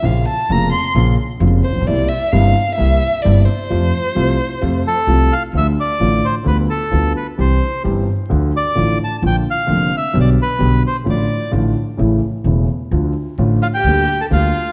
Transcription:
<<
  \new Staff \with { instrumentName = "Bandoneon" } { \time 4/4 \key f \major \tempo 4 = 130 r1 | r1 | r2 r8 a'4 f''8 | \key d \minor e''8 d''4 c''8 b'8 a'4 b'8 |
c''4 r4. d''4 a''16. a''32 | g''8 f''4 e''8 d''8 b'4 c''8 | d''4 r2. | r4. f''16 g''4 a''16 f''4 | }
  \new Staff \with { instrumentName = "Violin" } { \time 4/4 \key f \major f''8 a''8 bes''8 c'''8 r4. c''8 | d''8 e''8 f''4 e''4 d''8 c''8~ | c''2. r4 | \key d \minor r1 |
r1 | r1 | r1 | r4. f'16 g'4 a'16 f'4 | }
  \new Staff \with { instrumentName = "Grand piano" } { \clef bass \time 4/4 \key f \major <bes,, bes, des f bes f'>8 r8 <f,, f, des f bes f'>8 r8 <bes,, bes, des f bes f'>8 r8 <f,, f, des f bes f'>8 r32 a,,32 bes,,32 b,,32 | <c, c g bes e'>8 r8 <g,, g, c g bes e'>8 r8 <c, c g bes e'>8 r8 <g,, g, c g bes e'>8 r8 | <f, c f a f'>8 r8 <c, c f a f'>8 r8 <f, c f a f'>8 r8 <c, c f a f'>8 r8 | \key d \minor <d, d f a f'>8 r8 <a,, a, d f a f'>8 r8 <d, d g b f'>8 r8 <d, d g b f'>8 r8 |
<c, c e g c' g'>8 r8 <g,, g, e g c' g'>8 r8 <d, d f a f'>8 r8 <a,, a, d f a f'>8 r8 | <bes,, bes, d f bes f'>8 r8 <f,, f, d f bes f'>8 r8 <b,, b, d g b g'>8 r8 <b,, b, d g b g'>8 r8 | <a,, a, d f a f'>8 r8 <a,, a, d f a f'>8 r8 <a,, a, cis e a e'>8 r8 <e,, e, cis e a e'>8 r8 | <d, d f a f'>8 r8 <a,, a, d f a f'>8 r8 <d, d g bes g'>8 r8 <d, d g bes g'>8 r8 | }
  \new Staff \with { instrumentName = "Upright bass" } { \clef bass \time 4/4 \key f \major bes,,16. r8 r32 f,,16. r8 r32 bes,,16. r8 r32 f,,16. r16 a,,32 bes,,32 b,,32 | c,16. r8 r32 g,,16. r8 r32 c,16. r8 r32 g,,16. r8 r32 | f,16. r8 r32 c,16. r8 r32 f,16. r8 r32 c,16. r8 r32 | \key d \minor d,16. r8 r32 a,,16. r8 r32 d,16. r8 r32 d,16. r8 r32 |
c,16. r8 r32 g,,16. r8 r32 d,16. r8 r32 a,,16. r8 r32 | bes,,16. r8 r32 f,,16. r8 r32 b,,16. r8 r32 b,,16. r8 r32 | a,,16. r8 r32 a,,16. r8 r32 a,,16. r8 r32 e,,16. r8 r32 | d,16. r8 r32 a,,16. r8 r32 d,16. r8 r32 d,16. r8 r32 | }
>>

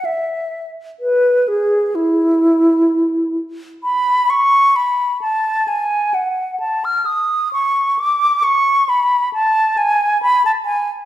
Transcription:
\new Staff \with { instrumentName = "Flute" } { \time 4/4 \key e \mixolydian \tempo 4 = 65 e''8. r16 b'8 gis'8 e'4. r8 | \key b \dorian b''8 cis'''8 b''8 a''8 gis''8 fis''8 a''16 eis'''16 dis'''8 | cis'''8 d'''8 cis'''8 b''8 a''8 gis''8 b''16 a''16 gis''8 | }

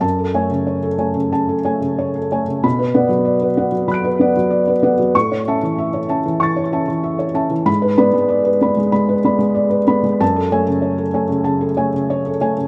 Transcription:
<<
  \new Staff \with { instrumentName = "Felt piano" } { \time 4/4 \key fis \minor \tempo 4 = 95 << { a''8 r2. r8 | b''8 r4. <fis''' d''''>2 | cis'''8 r4. a'''2 | b''8 r2. r8 |
a''8 r2. r8 | } \\ { r16 a'16 <cis'' gis''>16 cis16 cis''16 a'16 <cis'' gis''>16 cis16 a''16 a'16 <cis'' gis''>16 cis16 cis''16 a'16 <cis'' gis''>16 cis16 | r16 b'16 <d'' fis''>16 fis16 d''16 b'16 <d'' fis''>16 fis16 b''16 b'16 <d'' fis''>16 fis16 d''16 b'16 <d'' fis''>16 fis16 | r16 cis''16 <e'' a''>16 e16 e''16 cis''16 <e'' a''>16 e16 cis'''16 cis''16 <e'' a''>16 e16 e''16 cis''16 <e'' a''>16 e16 | r16 b'16 <d'' b''>16 gis16 d''16 b'16 <d'' b''>16 gis16 b''16 b'16 <d'' b''>16 gis16 d''16 b'16 <d'' b''>16 gis16 |
r16 a'16 <cis'' gis''>16 cis16 cis''16 a'16 <cis'' gis''>16 cis16 a''16 a'16 <cis'' gis''>16 cis16 cis''16 a'16 <cis'' gis''>16 cis16 | } >> }
  \new Staff \with { instrumentName = "Felt piano" } { \time 4/4 \key fis \minor fis,8 a4 a8 cis8 a4 a8 | b,8 b4 b8 fis8 b4 b8 | a,8 cis'4 cis'8 e8 cis'4 cis'8 | gis,8 b4 b8 gis8 b4 b8 |
fis,8 a4 a8 cis8 a4 a8 | }
>>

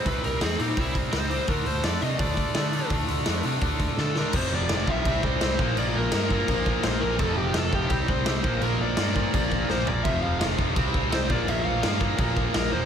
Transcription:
<<
  \new Staff \with { instrumentName = "Overdriven electric guitar" } { \time 4/4 \key bes \lydian \tempo 4 = 168 b'8 bes'8 aes'8 ees'8 e'8 r8 c''4 | bes'8 c''8 d''8 ees''8 d''2 | r2. a'8 bes'8 | c''8 d''8 d''8 e''4 c''4. |
d''8 bes'2~ bes'8 c''8 bes'8 | a'8 g'8 a'8 g'4 c''4. | bes'8 d''2~ d''8 c''8 d''8 | e''8 f''8 f''8 r4. c''8 d''8 |
e''8 f''8 f''8 r4. bes'8 c''8 | }
  \new Staff \with { instrumentName = "Distorted electric guitar" } { \clef bass \time 4/4 \key bes \lydian <c g c'>4 <c g c'>8 <c g c'>8 <c g c'>4 <c g c'>8 <c g c'>8 | <d a d'>4 <d a d'>8 <d a d'>8 <d a d'>4 <d a d'>8 <d a d'>8 | <d a d'>4 <d a d'>8 <d a d'>8 <d a d'>4 <d a d'>8 <d a d'>8 | <f, c f>4 <f, c f>8 <f, c f>8 <c g c'>4 <c g c'>8 <bes, f bes>8 |
<bes, f bes>4 <bes, f bes>8 <bes, f bes>8 <bes, f bes>4 <bes, f bes>8 <bes, f bes>8 | <f, c f>4 <f, c f>8 <f, c f>8 <c g c'>4 <c g c'>8 <bes, f bes>8 | <bes, f bes>4 <bes, f bes>8 <bes, f bes>8 <bes, f bes>4 <bes, f bes>8 <bes, f bes>8 | <f, c f>4 <f, c f>8 <f, c f>8 <c g c'>4 <c g c'>8 <bes, f bes>8 |
<bes, f bes>4 <bes, f bes>8 <bes, f bes>8 <bes, f bes>4 <bes, f bes>8 <bes, f bes>8 | }
  \new Staff \with { instrumentName = "Distorted electric guitar" } { \clef bass \time 4/4 \key bes \lydian r1 | r1 | r1 | <f, c f>4. <f, c f>8 <c g c'>4. <bes, f bes>8~ |
<bes, f bes>4 <bes, f bes>2~ <bes, f bes>8 r8 | <f, c f>4. <f, c f>8 <c g c'>4. <bes, f bes>8~ | <bes, f bes>4 <bes, f bes>2~ <bes, f bes>8 r8 | <f, c f>4. <f, c f>8 <c g c'>4. <bes, f bes>8~ |
<bes, f bes>4 <bes, f bes>2~ <bes, f bes>8 r8 | }
  \new Staff \with { instrumentName = "Picked electric bass" } { \clef bass \time 4/4 \key bes \lydian c,8 c,8 e,8 bes,8 c,4 des,4 | d,8 d,8 f,8 c8 d,4 d4 | d,8 d,8 f,8 c8 d,4 d4 | f,,8 f,,8 f,,8 b,,8 c,8 c,8 c,8 bes,,8 |
bes,,8 bes,,8 g,4 bes,,4 bes,,8 bes,,8 | f,,8 f,,8 f,,8 f,,8 c,8 c,8 c,8 bes,,8 | bes,,8 bes,,8 g,4 bes,,4 bes,,8 bes,,8 | f,,8 f,,8 f,,8 f,,8 c,8 c,8 c,8 bes,,8 |
bes,,8 bes,,8 g,4 bes,,4 bes,,8 e,,8 | }
  \new DrumStaff \with { instrumentName = "Drums" } \drummode { \time 4/4 <hho bd>8 hho8 <hho sn>8 hho8 <hho bd>8 <hho bd>8 <hho sn>8 hho8 | <hho bd>8 hho8 <hho sn>8 hho8 <hho bd>8 <hho bd>8 <hho sn>8 hho8 | <hho bd>8 hho8 <hho sn>8 hho8 <hho bd>8 <hho bd>8 sn8 sn8 | <cymc bd>4 <cymc sn>8 bd8 <cymc bd>8 bd8 <cymc sn>8 bd8 |
cymc4 <cymc sn>8 bd8 <cymc bd>8 bd8 <cymc sn>4 | <cymc bd>4 <cymc sn>8 bd8 <cymc bd>8 bd8 <cymc sn>8 bd8 | cymc4 <cymc sn>8 bd8 <cymc bd>8 bd8 sn8 tomfh8 | <cymc bd>4 <cymc sn>8 bd8 <cymc bd>8 bd8 <cymc sn>8 bd8 |
cymc4 <cymc sn>8 bd8 <cymc bd>8 bd8 <cymc sn>4 | }
>>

